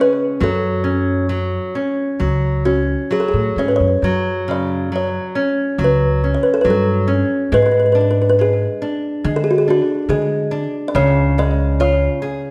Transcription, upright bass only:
0, 0, Header, 1, 2, 480
1, 0, Start_track
1, 0, Key_signature, 3, "minor"
1, 0, Tempo, 895522
1, 217, Time_signature, 4, 2, 24, 8
1, 3102, Tempo, 859599
1, 6854, End_track
2, 0, Start_track
2, 0, Title_t, "Upright bass"
2, 0, Program_c, 0, 32
2, 220, Note_on_c, 0, 42, 95
2, 842, Note_off_c, 0, 42, 0
2, 1180, Note_on_c, 0, 37, 76
2, 1577, Note_off_c, 0, 37, 0
2, 1788, Note_on_c, 0, 45, 70
2, 1900, Note_off_c, 0, 45, 0
2, 1909, Note_on_c, 0, 44, 66
2, 2021, Note_off_c, 0, 44, 0
2, 2037, Note_on_c, 0, 42, 63
2, 2145, Note_off_c, 0, 42, 0
2, 2156, Note_on_c, 0, 42, 75
2, 2773, Note_off_c, 0, 42, 0
2, 3100, Note_on_c, 0, 37, 84
2, 3414, Note_off_c, 0, 37, 0
2, 3582, Note_on_c, 0, 43, 79
2, 3896, Note_off_c, 0, 43, 0
2, 4069, Note_on_c, 0, 44, 88
2, 4697, Note_off_c, 0, 44, 0
2, 5033, Note_on_c, 0, 50, 92
2, 5341, Note_off_c, 0, 50, 0
2, 5503, Note_on_c, 0, 50, 85
2, 5814, Note_off_c, 0, 50, 0
2, 5984, Note_on_c, 0, 37, 98
2, 6610, Note_off_c, 0, 37, 0
2, 6854, End_track
0, 0, End_of_file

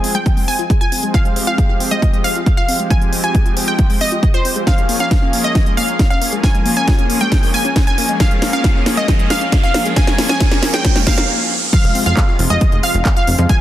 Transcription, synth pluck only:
0, 0, Header, 1, 2, 480
1, 0, Start_track
1, 0, Key_signature, -4, "minor"
1, 0, Tempo, 441176
1, 1242, Time_signature, 4, 2, 24, 8
1, 14806, End_track
2, 0, Start_track
2, 0, Title_t, "Synth pluck"
2, 0, Program_c, 0, 84
2, 162, Note_on_c, 0, 79, 94
2, 455, Note_off_c, 0, 79, 0
2, 522, Note_on_c, 0, 80, 91
2, 815, Note_off_c, 0, 80, 0
2, 881, Note_on_c, 0, 80, 96
2, 1174, Note_off_c, 0, 80, 0
2, 1242, Note_on_c, 0, 77, 99
2, 1535, Note_off_c, 0, 77, 0
2, 1602, Note_on_c, 0, 77, 98
2, 1992, Note_off_c, 0, 77, 0
2, 2081, Note_on_c, 0, 75, 94
2, 2374, Note_off_c, 0, 75, 0
2, 2440, Note_on_c, 0, 77, 94
2, 2734, Note_off_c, 0, 77, 0
2, 2800, Note_on_c, 0, 77, 95
2, 3094, Note_off_c, 0, 77, 0
2, 3160, Note_on_c, 0, 80, 95
2, 3454, Note_off_c, 0, 80, 0
2, 3522, Note_on_c, 0, 80, 99
2, 3913, Note_off_c, 0, 80, 0
2, 4003, Note_on_c, 0, 79, 92
2, 4295, Note_off_c, 0, 79, 0
2, 4363, Note_on_c, 0, 75, 94
2, 4656, Note_off_c, 0, 75, 0
2, 4723, Note_on_c, 0, 72, 95
2, 5015, Note_off_c, 0, 72, 0
2, 5083, Note_on_c, 0, 77, 97
2, 5376, Note_off_c, 0, 77, 0
2, 5442, Note_on_c, 0, 77, 99
2, 5833, Note_off_c, 0, 77, 0
2, 5922, Note_on_c, 0, 75, 92
2, 6215, Note_off_c, 0, 75, 0
2, 6280, Note_on_c, 0, 77, 91
2, 6574, Note_off_c, 0, 77, 0
2, 6642, Note_on_c, 0, 77, 95
2, 6935, Note_off_c, 0, 77, 0
2, 7002, Note_on_c, 0, 80, 99
2, 7295, Note_off_c, 0, 80, 0
2, 7363, Note_on_c, 0, 80, 100
2, 7753, Note_off_c, 0, 80, 0
2, 7843, Note_on_c, 0, 79, 91
2, 8135, Note_off_c, 0, 79, 0
2, 8205, Note_on_c, 0, 80, 96
2, 8496, Note_off_c, 0, 80, 0
2, 8564, Note_on_c, 0, 80, 94
2, 8856, Note_off_c, 0, 80, 0
2, 8922, Note_on_c, 0, 77, 100
2, 9215, Note_off_c, 0, 77, 0
2, 9283, Note_on_c, 0, 77, 99
2, 9673, Note_off_c, 0, 77, 0
2, 9764, Note_on_c, 0, 75, 95
2, 10056, Note_off_c, 0, 75, 0
2, 10124, Note_on_c, 0, 77, 97
2, 10416, Note_off_c, 0, 77, 0
2, 10483, Note_on_c, 0, 77, 99
2, 10775, Note_off_c, 0, 77, 0
2, 10842, Note_on_c, 0, 80, 101
2, 11135, Note_off_c, 0, 80, 0
2, 11203, Note_on_c, 0, 80, 100
2, 11593, Note_off_c, 0, 80, 0
2, 11682, Note_on_c, 0, 79, 98
2, 11975, Note_off_c, 0, 79, 0
2, 12042, Note_on_c, 0, 77, 95
2, 12282, Note_off_c, 0, 77, 0
2, 12763, Note_on_c, 0, 77, 100
2, 13055, Note_off_c, 0, 77, 0
2, 13122, Note_on_c, 0, 77, 101
2, 13513, Note_off_c, 0, 77, 0
2, 13602, Note_on_c, 0, 75, 96
2, 13895, Note_off_c, 0, 75, 0
2, 13963, Note_on_c, 0, 77, 94
2, 14255, Note_off_c, 0, 77, 0
2, 14324, Note_on_c, 0, 77, 97
2, 14616, Note_off_c, 0, 77, 0
2, 14682, Note_on_c, 0, 80, 97
2, 14806, Note_off_c, 0, 80, 0
2, 14806, End_track
0, 0, End_of_file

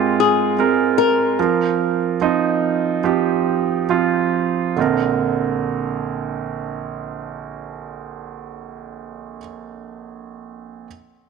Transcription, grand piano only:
0, 0, Header, 1, 2, 480
1, 0, Start_track
1, 0, Tempo, 803213
1, 823, Time_signature, 4, 2, 24, 8
1, 1311, Tempo, 846262
1, 2271, Tempo, 895522
1, 6242, End_track
2, 0, Start_track
2, 0, Title_t, "Grand piano"
2, 0, Program_c, 0, 0
2, 0, Control_c, 0, 64, 127
2, 0, Note_on_c, 0, 44, 58
2, 0, Note_on_c, 0, 56, 53
2, 0, Note_on_c, 0, 60, 51
2, 0, Note_on_c, 0, 65, 60
2, 0, Note_on_c, 0, 70, 69
2, 321, Note_off_c, 0, 56, 0
2, 323, Note_off_c, 0, 60, 0
2, 327, Note_off_c, 0, 65, 0
2, 351, Note_on_c, 0, 56, 52
2, 354, Note_on_c, 0, 60, 50
2, 357, Note_off_c, 0, 70, 0
2, 357, Note_on_c, 0, 70, 67
2, 802, Note_off_c, 0, 56, 0
2, 803, Note_off_c, 0, 60, 0
2, 805, Note_off_c, 0, 70, 0
2, 830, Control_c, 0, 64, 0
2, 830, Note_on_c, 0, 60, 50
2, 831, Note_off_c, 0, 44, 0
2, 832, Note_on_c, 0, 53, 56
2, 835, Note_on_c, 0, 70, 58
2, 951, Control_c, 0, 64, 127
2, 1290, Note_off_c, 0, 60, 0
2, 1291, Note_off_c, 0, 53, 0
2, 1292, Note_off_c, 0, 70, 0
2, 1323, Note_on_c, 0, 53, 60
2, 1324, Note_on_c, 0, 60, 57
2, 1328, Note_on_c, 0, 63, 70
2, 1766, Note_off_c, 0, 53, 0
2, 1767, Note_off_c, 0, 60, 0
2, 1769, Note_off_c, 0, 63, 0
2, 1789, Note_on_c, 0, 53, 62
2, 1789, Note_on_c, 0, 60, 55
2, 1796, Note_on_c, 0, 67, 64
2, 2248, Note_off_c, 0, 53, 0
2, 2249, Note_off_c, 0, 60, 0
2, 2252, Note_off_c, 0, 67, 0
2, 2275, Note_on_c, 0, 53, 58
2, 2278, Note_on_c, 0, 60, 55
2, 2280, Note_on_c, 0, 65, 67
2, 2722, Note_off_c, 0, 53, 0
2, 2724, Note_off_c, 0, 60, 0
2, 2725, Note_off_c, 0, 65, 0
2, 2741, Note_on_c, 0, 50, 49
2, 2750, Note_on_c, 0, 34, 54
2, 2751, Control_c, 0, 64, 0
2, 2752, Note_on_c, 0, 60, 51
2, 2765, Note_on_c, 0, 70, 58
2, 2842, Control_c, 0, 64, 127
2, 5203, Note_off_c, 0, 50, 0
2, 5212, Note_off_c, 0, 34, 0
2, 5213, Note_off_c, 0, 60, 0
2, 5227, Note_off_c, 0, 70, 0
2, 6016, Control_c, 0, 64, 0
2, 6242, End_track
0, 0, End_of_file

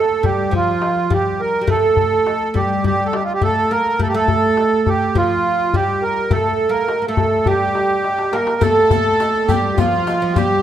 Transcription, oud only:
0, 0, Header, 1, 2, 480
1, 0, Start_track
1, 0, Tempo, 578592
1, 1394, Time_signature, 4, 2, 24, 8
1, 8813, End_track
2, 0, Start_track
2, 0, Title_t, "Oud"
2, 0, Program_c, 0, 24
2, 0, Note_on_c, 0, 57, 76
2, 188, Note_off_c, 0, 57, 0
2, 192, Note_on_c, 0, 55, 66
2, 425, Note_on_c, 0, 53, 65
2, 440, Note_off_c, 0, 55, 0
2, 876, Note_off_c, 0, 53, 0
2, 916, Note_on_c, 0, 55, 64
2, 1329, Note_off_c, 0, 55, 0
2, 1339, Note_on_c, 0, 55, 57
2, 1385, Note_off_c, 0, 55, 0
2, 1389, Note_on_c, 0, 57, 76
2, 2103, Note_off_c, 0, 57, 0
2, 2107, Note_on_c, 0, 55, 66
2, 2333, Note_off_c, 0, 55, 0
2, 2359, Note_on_c, 0, 55, 58
2, 2524, Note_off_c, 0, 55, 0
2, 2834, Note_on_c, 0, 57, 59
2, 3075, Note_off_c, 0, 57, 0
2, 3078, Note_on_c, 0, 58, 67
2, 3311, Note_off_c, 0, 58, 0
2, 3314, Note_on_c, 0, 57, 70
2, 3421, Note_off_c, 0, 57, 0
2, 3438, Note_on_c, 0, 57, 70
2, 4276, Note_on_c, 0, 53, 63
2, 4304, Note_off_c, 0, 57, 0
2, 4764, Note_on_c, 0, 55, 61
2, 4769, Note_off_c, 0, 53, 0
2, 5231, Note_off_c, 0, 55, 0
2, 5234, Note_on_c, 0, 57, 73
2, 5550, Note_off_c, 0, 57, 0
2, 5553, Note_on_c, 0, 58, 69
2, 5813, Note_off_c, 0, 58, 0
2, 5823, Note_on_c, 0, 58, 48
2, 5874, Note_off_c, 0, 58, 0
2, 5877, Note_on_c, 0, 57, 66
2, 6193, Note_off_c, 0, 57, 0
2, 6197, Note_on_c, 0, 55, 68
2, 6907, Note_off_c, 0, 55, 0
2, 6911, Note_on_c, 0, 58, 70
2, 7135, Note_off_c, 0, 58, 0
2, 7144, Note_on_c, 0, 57, 78
2, 7866, Note_off_c, 0, 57, 0
2, 7869, Note_on_c, 0, 55, 65
2, 8111, Note_on_c, 0, 53, 66
2, 8118, Note_off_c, 0, 55, 0
2, 8468, Note_off_c, 0, 53, 0
2, 8478, Note_on_c, 0, 53, 67
2, 8596, Note_on_c, 0, 55, 69
2, 8599, Note_off_c, 0, 53, 0
2, 8813, Note_off_c, 0, 55, 0
2, 8813, End_track
0, 0, End_of_file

